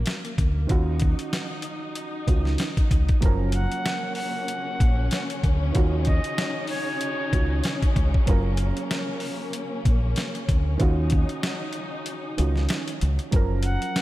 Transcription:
0.00 0.65 F#3 medium
0.00 0.68 A#3 medium
0.00 0.66 C#4 medium
0.00 0.66 F4 medium
0.00 0.67 A#4 medium
0.06 snare loud
0.06 closed hi-hat medium
0.25 closed hi-hat medium
0.38 0.66 D2 medium
0.38 kick loud
0.38 closed hi-hat medium
0.67 1.13 D#2 loud
0.67 2.23 D#3 medium
0.67 2.24 C#4 medium
0.67 3.20 D#4 medium
0.67 2.25 F4 medium
0.67 kick loud
0.67 closed hi-hat medium
0.72 2.25 F#4 medium
1.00 kick medium
1.00 closed hi-hat medium
1.19 closed hi-hat medium
1.33 snare loud
1.33 closed hi-hat medium
1.62 closed hi-hat medium
1.95 closed hi-hat medium
2.26 2.55 C#2 medium
2.26 3.22 D#3 medium
2.26 3.21 C#4 medium
2.26 3.23 F4 soft
2.26 3.23 F#4 medium
2.26 kick medium
2.26 closed hi-hat medium
2.45 snare soft
2.58 snare loud
2.58 closed hi-hat medium
2.77 kick medium
2.77 closed hi-hat medium
2.91 3.07 C#2 medium
2.91 kick loud
2.91 closed hi-hat medium
3.09 kick loud
3.09 closed hi-hat medium
3.21 3.66 F#1 loud
3.21 5.72 F3 medium
3.21 5.70 F#3 medium
3.21 5.71 C#4 medium
3.21 kick loud
3.21 closed hi-hat medium
3.25 13.30 C#3 medium
3.25 5.74 A#3 medium
3.25 13.30 C#4 medium
3.25 5.73 A#4 medium
3.52 4.13 F#5 medium
3.52 closed hi-hat medium
3.72 closed hi-hat medium
3.86 snare loud
3.86 closed hi-hat medium
4.15 5.25 F#5 medium
4.15 open hi-hat medium
4.48 closed hi-hat medium
4.80 5.08 A#1 loud
4.80 kick loud
4.80 closed hi-hat medium
5.11 snare loud
5.11 closed hi-hat medium
5.30 closed hi-hat medium
5.44 5.71 D2 medium
5.44 kick loud
5.44 closed hi-hat medium
5.72 6.19 D#2 loud
5.72 7.28 D#3 medium
5.72 7.29 C#4 medium
5.72 8.25 D#4 medium
5.72 7.30 F4 medium
5.72 kick loud
5.72 closed hi-hat medium
5.77 7.31 F#4 medium
6.05 6.66 D#5 medium
6.05 kick medium
6.05 closed hi-hat medium
6.24 closed hi-hat medium
6.38 snare loud
6.38 closed hi-hat medium
6.67 7.79 C#5 medium
6.67 open hi-hat medium
7.01 closed hi-hat medium
7.32 7.61 C#2 medium
7.32 8.27 D#3 medium
7.32 8.26 C#4 medium
7.32 8.28 F4 soft
7.32 8.28 F#4 medium
7.32 kick loud
7.32 closed hi-hat medium
7.64 snare loud
7.64 closed hi-hat loud
7.82 kick medium
7.82 closed hi-hat medium
7.96 8.12 C#2 loud
7.96 kick loud
7.96 closed hi-hat medium
8.14 kick loud
8.26 8.71 F#1 loud
8.26 10.75 F#3 medium
8.26 10.78 A#3 medium
8.26 10.76 C#4 medium
8.26 10.77 F4 medium
8.26 kick loud
8.26 closed hi-hat medium
8.31 10.78 A#4 medium
8.57 closed hi-hat medium
8.77 closed hi-hat medium
8.91 snare loud
8.91 closed hi-hat medium
9.20 open hi-hat medium
9.53 closed hi-hat loud
9.85 10.13 A#1 loud
9.85 kick loud
9.85 closed hi-hat medium
10.16 snare loud
10.16 closed hi-hat medium
10.35 closed hi-hat medium
10.49 10.76 D2 medium
10.49 kick loud
10.49 closed hi-hat medium
10.78 11.24 D#2 loud
10.78 12.34 D#3 medium
10.78 12.35 C#4 medium
10.78 13.31 D#4 medium
10.78 12.35 F4 medium
10.78 kick loud
10.78 closed hi-hat medium
10.82 12.36 F#4 medium
11.10 kick loud
11.10 closed hi-hat medium
11.29 closed hi-hat medium
11.43 snare loud
11.43 closed hi-hat medium
11.73 closed hi-hat medium
12.06 closed hi-hat medium
12.37 12.66 C#2 medium
12.37 13.32 D#3 medium
12.37 13.31 C#4 medium
12.37 13.33 F4 medium
12.37 13.34 F#4 medium
12.37 closed hi-hat medium
12.56 snare soft
12.69 snare loud
12.69 closed hi-hat loud
12.88 closed hi-hat medium
13.01 13.18 C#2 loud
13.01 closed hi-hat medium
13.19 closed hi-hat medium
13.31 13.76 F#1 loud
13.31 14.02 F3 medium
13.31 14.02 F#3 medium
13.31 14.02 C#4 medium
13.31 kick loud
13.31 closed hi-hat medium
13.36 14.02 A#4 medium
13.63 14.02 F#5 medium
13.63 closed hi-hat medium
13.82 closed hi-hat medium
13.96 snare loud
13.96 closed hi-hat medium

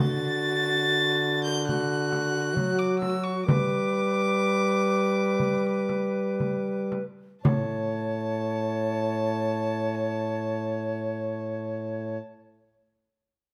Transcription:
0.00 2.57 D3 medium
0.00 1.63 F#4 medium
0.00 1.43 A6 loud
1.45 1.67 G6 loud
1.68 3.48 F#4 medium
1.68 2.80 F#6 loud
1.68 frame drum soft
2.12 frame drum medium
2.56 3.46 F#3 medium
2.56 frame drum medium
2.79 2.99 D6 medium
3.00 3.25 E6 medium
3.00 frame drum medium
3.24 3.45 C#6 medium
3.46 6.99 G3 medium
3.46 7.04 B4 medium
3.46 6.87 D6 loud
3.46 frame drum medium
5.40 frame drum medium
5.89 frame drum soft
6.40 frame drum soft
6.92 frame drum medium
7.43 12.18 A2 medium
7.43 12.18 C#5 medium
7.43 12.17 A5 medium
7.43 frame drum medium

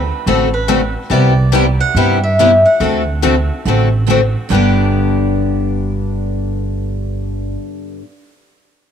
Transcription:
0.00 0.24 B4 medium
0.26 0.94 A1 medium
0.26 0.48 D3 medium
0.26 0.48 A3 medium
0.26 0.48 C4 medium
0.26 0.48 F#4 medium
0.26 0.48 A4 medium
0.26 0.36 A4 medium
0.54 0.93 B4 medium
0.68 0.80 D3 medium
0.68 0.80 A3 medium
0.68 0.80 C4 medium
0.68 0.80 F#4 medium
0.68 0.80 A4 medium
1.10 1.79 C2 medium
1.10 1.32 C3 medium
1.10 1.32 G3 medium
1.10 1.32 B3 medium
1.10 1.32 E4 medium
1.10 1.32 G4 medium
1.10 1.80 D5 medium
1.52 1.64 C3 medium
1.52 1.64 G3 medium
1.52 1.64 B3 medium
1.52 1.65 E4 medium
1.52 1.65 G4 medium
1.80 2.20 F#5 medium
1.95 2.63 G2 medium
1.95 2.17 C3 medium
1.95 2.17 G3 medium
1.95 2.18 B3 medium
1.95 2.17 E4 medium
1.95 2.18 G4 medium
2.23 2.62 E5 medium
2.39 2.50 C3 medium
2.39 2.50 G3 medium
2.39 2.50 B3 medium
2.39 2.51 E4 medium
2.39 2.50 G4 medium
2.65 4.05 F#5 medium
2.80 3.48 D2 medium
2.80 3.01 D3 soft
2.80 3.02 A3 medium
2.80 3.02 C4 medium
2.80 3.02 F#4 medium
2.80 3.02 A4 medium
3.22 3.34 D3 medium
3.22 3.34 A3 medium
3.22 3.34 C4 medium
3.22 3.34 F#4 medium
3.22 3.34 A4 medium
3.65 4.33 A1 medium
3.65 3.88 D3 medium
3.65 3.88 A3 medium
3.65 3.88 C4 medium
3.65 3.88 F#4 medium
3.65 3.88 A4 medium
4.10 4.20 D3 medium
4.10 4.20 A3 medium
4.10 4.20 C4 medium
4.10 4.21 F#4 medium
4.10 4.20 A4 medium
4.50 7.55 G1 medium
4.50 8.01 G2 medium
4.50 8.02 D3 medium
4.50 8.03 B3 medium
4.50 8.04 D4 medium
4.50 7.56 G5 medium
4.54 8.04 G4 medium

